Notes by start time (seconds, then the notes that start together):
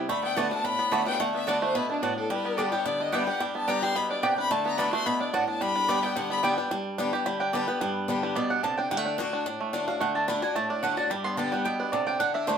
Already playing: B3
0.09 D3 A3 B5
0.23 B3 G5
0.36 D3 A3 B3 F#4 D5 F#5 A5
0.51 B3 D4 F#4 A5
0.64 A2 D4 B5
0.79 B3
0.91 D3 A3 B3 F#4 D5 A5
1.06 B3 D4 F#4 G5
1.20 D3 A3 F#5
1.34 B3 E5
1.47 D3 A3 B3 D4 F#4 D5 A5
1.62 A3 C5
1.75 B2 B3 B4
1.90 D4
2.02 A2 B3 D4 F#4 D5 A5
2.18 D4 A4
2.30 G2 G3 B4
2.45 B3
2.57 D3 G3 B3 D4 G4 D5 G5
2.72 G3 B3 G4 C#5
2.85 D3 B3 D5
3.00 D4 D#5
3.12 D3 G3 B3 G4 D5 E5 G5
3.27 B3 D4 G4 F#5
3.40 G2 G3 G5
3.55 B3 A5
3.67 D3 G3 B3 D4 G4 D5 G5 A#5
3.82 G3 B3 G4 C6
3.96 B2 B3 B5
4.10 D4 D5
4.22 C3 B3 G4 D5 G5
4.38 D4 B5
4.51 D3 A3 A5
4.66 B3 A#5
4.78 D3 A3 B3 D4 F#4 D5 A5 B5
4.92 A3 B3 F#4 C6
5.06 B2 B3 B5
5.20 D4 D5
5.33 A2 B3 D4 F#4 D5 F#5 A5
5.48 D4 A5
5.61 G2 G3 B5
5.76 D4
5.88 D3 G3 B3 G4 D5 G5
6.03 B3 G4 G5
6.16 D3 G3 F#5
6.30 B3 B5
6.43 D3 G3 B3 G4 D5 G5
6.58 B3 D4 G4
6.71 G2 G3
6.98 D3 G3 B3 D4 G4
7.13 B3 G4
7.26 D3 G3 B5
7.40 D4 G5
7.53 D3 G3 B3 G4 D5
7.67 B3 G4 B4
7.80 G2 G3 B4
8.08 D3 G3 B3 D4 G4
8.23 G3
8.35 B2 B3 D5
8.50 D4 F#5
8.63 C3 D3 A5
8.78 D4 G5
8.91 D3 G3 F#5
8.97 A3
9.06 D4
9.18 D3 A3 D4 F#4
9.33 D4
9.46 A2 D4
9.60 A3
9.73 D3 A3 D4 F#4
9.88 D4 F#4 F5
10.00 D3 A3 F#5
10.15 D4 A5
10.28 D3 A3 D4 F#4 B5
10.42 D4 F#4 G#5
10.55 A2 A3 A5
10.70 D4 D5
10.83 D3 A3 D4 F#4 F#5
10.97 D4 F#4 A5
11.10 G2 G3 B5
11.24 B3 C6
11.37 D3 G3 B3 D4 G4 A5
11.52 G3 B3 G4 F#5
11.65 B2 B3 G5
11.79 D4 B4
11.92 C3 D3 D5
12.07 D4 G5
12.20 D3 D4 F#5
12.34 D4 E5
12.47 D3 A3 D4 F#4 C5